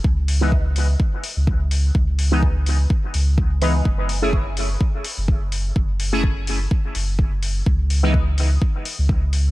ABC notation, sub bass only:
X:1
M:4/4
L:1/16
Q:"Swing 16ths" 1/4=126
K:C#m
V:1 name="Sub bass" clef=bass
C,,8 z3 C,,4- C,, | C,,8 z2 C,,6 | F,,,8 z3 F,,,4- F,,, | F,,,8 z2 F,,,6 |
C,,8 z3 C,,4- C,, |]